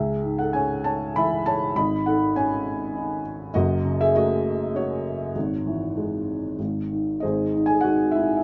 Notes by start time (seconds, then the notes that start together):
Already playing: C#2 G#4 E5
0.22 G#2
0.38 A4 F#5
0.53 C#3 C#5 G#5
0.84 C#5 A5
1.15 E3 E5 B5
1.46 C#5 A5
1.76 G#1 G#2 D#5 B5
2.06 D#3 A4 F#5
2.36 C#4 C#5 G#5
2.97 D#4
3.54 F#1 F#2 F#4 D#5
3.85 C#3
4.01 G#4 E5
4.14 A3 F#4 D#5
4.74 C#4 F#4 C#5
5.35 G#1 G#2
5.66 E3
5.97 G#3
6.59 G#1 G#2
6.92 D#3
7.20 G#2 D#4 G#4 C5 D#5
7.24 G#1
7.55 G#2
7.66 G#4 G#5
7.81 F#4 F#5
7.87 D#3
8.11 E4 E5
8.18 G#2
8.37 E5